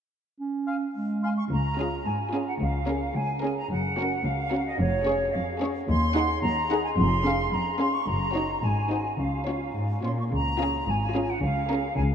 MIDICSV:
0, 0, Header, 1, 9, 480
1, 0, Start_track
1, 0, Key_signature, -5, "major"
1, 0, Tempo, 557103
1, 340, Time_signature, 2, 2, 24, 8
1, 1780, Tempo, 545951
1, 7060, Tempo, 556586
1, 10577, End_track
2, 0, Start_track
2, 0, Title_t, "Flute section"
2, 0, Program_c, 0, 73
2, 579, Note_on_c, 0, 80, 30
2, 631, Note_off_c, 0, 80, 0
2, 1060, Note_on_c, 0, 80, 39
2, 1061, Note_on_c, 0, 84, 61
2, 1112, Note_off_c, 0, 80, 0
2, 1113, Note_off_c, 0, 84, 0
2, 1184, Note_on_c, 0, 85, 50
2, 1235, Note_off_c, 0, 85, 0
2, 1297, Note_on_c, 0, 82, 59
2, 1767, Note_off_c, 0, 82, 0
2, 1774, Note_on_c, 0, 80, 48
2, 2137, Note_off_c, 0, 80, 0
2, 2141, Note_on_c, 0, 78, 48
2, 2194, Note_off_c, 0, 78, 0
2, 2258, Note_on_c, 0, 77, 54
2, 2728, Note_off_c, 0, 77, 0
2, 2738, Note_on_c, 0, 80, 58
2, 2967, Note_off_c, 0, 80, 0
2, 2978, Note_on_c, 0, 80, 52
2, 3097, Note_off_c, 0, 80, 0
2, 3103, Note_on_c, 0, 82, 58
2, 3220, Note_off_c, 0, 82, 0
2, 3227, Note_on_c, 0, 78, 66
2, 3697, Note_off_c, 0, 78, 0
2, 3705, Note_on_c, 0, 77, 62
2, 4064, Note_off_c, 0, 77, 0
2, 4067, Note_on_c, 0, 75, 58
2, 4183, Note_off_c, 0, 75, 0
2, 4183, Note_on_c, 0, 73, 71
2, 4652, Note_off_c, 0, 73, 0
2, 4663, Note_on_c, 0, 77, 61
2, 4903, Note_off_c, 0, 77, 0
2, 5137, Note_on_c, 0, 84, 92
2, 5587, Note_off_c, 0, 84, 0
2, 5624, Note_on_c, 0, 82, 77
2, 5982, Note_off_c, 0, 82, 0
2, 5985, Note_on_c, 0, 80, 63
2, 6037, Note_off_c, 0, 80, 0
2, 6103, Note_on_c, 0, 84, 86
2, 6571, Note_off_c, 0, 84, 0
2, 6577, Note_on_c, 0, 82, 66
2, 6818, Note_off_c, 0, 82, 0
2, 6819, Note_on_c, 0, 84, 65
2, 6937, Note_off_c, 0, 84, 0
2, 6942, Note_on_c, 0, 85, 59
2, 7057, Note_on_c, 0, 82, 76
2, 7061, Note_off_c, 0, 85, 0
2, 7537, Note_off_c, 0, 82, 0
2, 7540, Note_on_c, 0, 80, 62
2, 8024, Note_off_c, 0, 80, 0
2, 8024, Note_on_c, 0, 77, 47
2, 8503, Note_off_c, 0, 77, 0
2, 8761, Note_on_c, 0, 84, 44
2, 8812, Note_off_c, 0, 84, 0
2, 8886, Note_on_c, 0, 85, 36
2, 8938, Note_off_c, 0, 85, 0
2, 8997, Note_on_c, 0, 82, 78
2, 9465, Note_off_c, 0, 82, 0
2, 9478, Note_on_c, 0, 80, 63
2, 9833, Note_off_c, 0, 80, 0
2, 9834, Note_on_c, 0, 78, 62
2, 9949, Note_on_c, 0, 77, 69
2, 9951, Note_off_c, 0, 78, 0
2, 10413, Note_off_c, 0, 77, 0
2, 10419, Note_on_c, 0, 80, 65
2, 10473, Note_off_c, 0, 80, 0
2, 10577, End_track
3, 0, Start_track
3, 0, Title_t, "Oboe"
3, 0, Program_c, 1, 68
3, 579, Note_on_c, 1, 77, 35
3, 665, Note_off_c, 1, 77, 0
3, 1069, Note_on_c, 1, 77, 37
3, 1154, Note_off_c, 1, 77, 0
3, 10577, End_track
4, 0, Start_track
4, 0, Title_t, "Violin section"
4, 0, Program_c, 2, 48
4, 1547, Note_on_c, 2, 68, 39
4, 1721, Note_off_c, 2, 68, 0
4, 2017, Note_on_c, 2, 68, 36
4, 2197, Note_off_c, 2, 68, 0
4, 2500, Note_on_c, 2, 70, 41
4, 2678, Note_off_c, 2, 70, 0
4, 2979, Note_on_c, 2, 70, 38
4, 3159, Note_off_c, 2, 70, 0
4, 3470, Note_on_c, 2, 70, 44
4, 3646, Note_off_c, 2, 70, 0
4, 3954, Note_on_c, 2, 70, 41
4, 4127, Note_off_c, 2, 70, 0
4, 4424, Note_on_c, 2, 73, 50
4, 4601, Note_off_c, 2, 73, 0
4, 4910, Note_on_c, 2, 73, 49
4, 5086, Note_off_c, 2, 73, 0
4, 5387, Note_on_c, 2, 78, 58
4, 5564, Note_off_c, 2, 78, 0
4, 5869, Note_on_c, 2, 78, 48
4, 6044, Note_off_c, 2, 78, 0
4, 6347, Note_on_c, 2, 77, 55
4, 6522, Note_off_c, 2, 77, 0
4, 6817, Note_on_c, 2, 77, 46
4, 6997, Note_off_c, 2, 77, 0
4, 7297, Note_on_c, 2, 73, 48
4, 7476, Note_off_c, 2, 73, 0
4, 7790, Note_on_c, 2, 72, 35
4, 7966, Note_off_c, 2, 72, 0
4, 8273, Note_on_c, 2, 73, 37
4, 8452, Note_off_c, 2, 73, 0
4, 8759, Note_on_c, 2, 73, 33
4, 8938, Note_off_c, 2, 73, 0
4, 9244, Note_on_c, 2, 68, 48
4, 9418, Note_off_c, 2, 68, 0
4, 9718, Note_on_c, 2, 68, 42
4, 9892, Note_off_c, 2, 68, 0
4, 10199, Note_on_c, 2, 70, 46
4, 10369, Note_off_c, 2, 70, 0
4, 10577, End_track
5, 0, Start_track
5, 0, Title_t, "Violin section"
5, 0, Program_c, 3, 48
5, 1536, Note_on_c, 3, 65, 37
5, 1715, Note_off_c, 3, 65, 0
5, 2020, Note_on_c, 3, 65, 40
5, 2198, Note_off_c, 3, 65, 0
5, 2502, Note_on_c, 3, 68, 39
5, 2679, Note_off_c, 3, 68, 0
5, 2975, Note_on_c, 3, 68, 43
5, 3157, Note_off_c, 3, 68, 0
5, 3460, Note_on_c, 3, 66, 46
5, 3641, Note_off_c, 3, 66, 0
5, 3936, Note_on_c, 3, 66, 47
5, 4118, Note_off_c, 3, 66, 0
5, 4416, Note_on_c, 3, 68, 56
5, 4597, Note_off_c, 3, 68, 0
5, 4893, Note_on_c, 3, 68, 51
5, 5077, Note_off_c, 3, 68, 0
5, 5378, Note_on_c, 3, 68, 53
5, 5560, Note_off_c, 3, 68, 0
5, 5857, Note_on_c, 3, 68, 55
5, 6038, Note_off_c, 3, 68, 0
5, 6343, Note_on_c, 3, 68, 50
5, 6520, Note_off_c, 3, 68, 0
5, 6820, Note_on_c, 3, 68, 51
5, 6999, Note_off_c, 3, 68, 0
5, 7298, Note_on_c, 3, 66, 43
5, 7477, Note_off_c, 3, 66, 0
5, 7785, Note_on_c, 3, 66, 37
5, 7963, Note_off_c, 3, 66, 0
5, 8273, Note_on_c, 3, 65, 37
5, 8452, Note_off_c, 3, 65, 0
5, 8758, Note_on_c, 3, 65, 32
5, 8937, Note_off_c, 3, 65, 0
5, 9238, Note_on_c, 3, 65, 48
5, 9415, Note_off_c, 3, 65, 0
5, 9710, Note_on_c, 3, 65, 45
5, 9888, Note_off_c, 3, 65, 0
5, 10183, Note_on_c, 3, 68, 46
5, 10361, Note_off_c, 3, 68, 0
5, 10577, End_track
6, 0, Start_track
6, 0, Title_t, "Viola section"
6, 0, Program_c, 4, 48
6, 1545, Note_on_c, 4, 61, 42
6, 1720, Note_off_c, 4, 61, 0
6, 2021, Note_on_c, 4, 61, 43
6, 2199, Note_off_c, 4, 61, 0
6, 2502, Note_on_c, 4, 61, 47
6, 2679, Note_off_c, 4, 61, 0
6, 2983, Note_on_c, 4, 61, 45
6, 3161, Note_off_c, 4, 61, 0
6, 3466, Note_on_c, 4, 61, 50
6, 3644, Note_off_c, 4, 61, 0
6, 3946, Note_on_c, 4, 61, 50
6, 4123, Note_off_c, 4, 61, 0
6, 4426, Note_on_c, 4, 61, 51
6, 4603, Note_off_c, 4, 61, 0
6, 4900, Note_on_c, 4, 61, 54
6, 5080, Note_off_c, 4, 61, 0
6, 5385, Note_on_c, 4, 63, 60
6, 5563, Note_off_c, 4, 63, 0
6, 5865, Note_on_c, 4, 63, 56
6, 6042, Note_off_c, 4, 63, 0
6, 6336, Note_on_c, 4, 61, 56
6, 6516, Note_off_c, 4, 61, 0
6, 6818, Note_on_c, 4, 61, 50
6, 6998, Note_off_c, 4, 61, 0
6, 7300, Note_on_c, 4, 63, 48
6, 7478, Note_off_c, 4, 63, 0
6, 7782, Note_on_c, 4, 63, 40
6, 7962, Note_off_c, 4, 63, 0
6, 8266, Note_on_c, 4, 61, 39
6, 8449, Note_off_c, 4, 61, 0
6, 8764, Note_on_c, 4, 61, 35
6, 8941, Note_off_c, 4, 61, 0
6, 9236, Note_on_c, 4, 61, 50
6, 9414, Note_off_c, 4, 61, 0
6, 9718, Note_on_c, 4, 61, 53
6, 9892, Note_off_c, 4, 61, 0
6, 10190, Note_on_c, 4, 61, 51
6, 10364, Note_off_c, 4, 61, 0
6, 10577, End_track
7, 0, Start_track
7, 0, Title_t, "Clarinet"
7, 0, Program_c, 5, 71
7, 342, Note_on_c, 5, 61, 45
7, 740, Note_off_c, 5, 61, 0
7, 823, Note_on_c, 5, 56, 44
7, 1223, Note_off_c, 5, 56, 0
7, 10577, End_track
8, 0, Start_track
8, 0, Title_t, "Cello section"
8, 0, Program_c, 6, 48
8, 1295, Note_on_c, 6, 37, 50
8, 1676, Note_off_c, 6, 37, 0
8, 1776, Note_on_c, 6, 44, 47
8, 2158, Note_off_c, 6, 44, 0
8, 2252, Note_on_c, 6, 37, 54
8, 2634, Note_off_c, 6, 37, 0
8, 2732, Note_on_c, 6, 37, 47
8, 3116, Note_off_c, 6, 37, 0
8, 3213, Note_on_c, 6, 42, 52
8, 3599, Note_off_c, 6, 42, 0
8, 3699, Note_on_c, 6, 37, 53
8, 4080, Note_off_c, 6, 37, 0
8, 4177, Note_on_c, 6, 41, 65
8, 4559, Note_off_c, 6, 41, 0
8, 4660, Note_on_c, 6, 41, 56
8, 5041, Note_off_c, 6, 41, 0
8, 5142, Note_on_c, 6, 39, 69
8, 5523, Note_off_c, 6, 39, 0
8, 5622, Note_on_c, 6, 39, 63
8, 6001, Note_off_c, 6, 39, 0
8, 6097, Note_on_c, 6, 41, 68
8, 6477, Note_off_c, 6, 41, 0
8, 6576, Note_on_c, 6, 41, 56
8, 6957, Note_off_c, 6, 41, 0
8, 7058, Note_on_c, 6, 42, 59
8, 7437, Note_off_c, 6, 42, 0
8, 7534, Note_on_c, 6, 44, 48
8, 7919, Note_off_c, 6, 44, 0
8, 8022, Note_on_c, 6, 49, 45
8, 8409, Note_off_c, 6, 49, 0
8, 8512, Note_on_c, 6, 44, 36
8, 8740, Note_off_c, 6, 44, 0
8, 8760, Note_on_c, 6, 46, 34
8, 8995, Note_off_c, 6, 46, 0
8, 9003, Note_on_c, 6, 49, 56
8, 9378, Note_off_c, 6, 49, 0
8, 9479, Note_on_c, 6, 44, 53
8, 9853, Note_off_c, 6, 44, 0
8, 9954, Note_on_c, 6, 49, 61
8, 10327, Note_off_c, 6, 49, 0
8, 10424, Note_on_c, 6, 49, 56
8, 10577, Note_off_c, 6, 49, 0
8, 10577, End_track
9, 0, Start_track
9, 0, Title_t, "Double bass section"
9, 0, Program_c, 7, 48
9, 1302, Note_on_c, 7, 37, 47
9, 1680, Note_off_c, 7, 37, 0
9, 2258, Note_on_c, 7, 37, 51
9, 2637, Note_off_c, 7, 37, 0
9, 3221, Note_on_c, 7, 30, 52
9, 3603, Note_off_c, 7, 30, 0
9, 4186, Note_on_c, 7, 29, 65
9, 4563, Note_off_c, 7, 29, 0
9, 5142, Note_on_c, 7, 39, 64
9, 5523, Note_off_c, 7, 39, 0
9, 6099, Note_on_c, 7, 29, 69
9, 6479, Note_off_c, 7, 29, 0
9, 7061, Note_on_c, 7, 30, 61
9, 7438, Note_off_c, 7, 30, 0
9, 7538, Note_on_c, 7, 32, 48
9, 7921, Note_off_c, 7, 32, 0
9, 8022, Note_on_c, 7, 37, 40
9, 8409, Note_off_c, 7, 37, 0
9, 8999, Note_on_c, 7, 37, 53
9, 9375, Note_off_c, 7, 37, 0
9, 9476, Note_on_c, 7, 32, 55
9, 9851, Note_off_c, 7, 32, 0
9, 9953, Note_on_c, 7, 37, 57
9, 10326, Note_off_c, 7, 37, 0
9, 10424, Note_on_c, 7, 37, 61
9, 10577, Note_off_c, 7, 37, 0
9, 10577, End_track
0, 0, End_of_file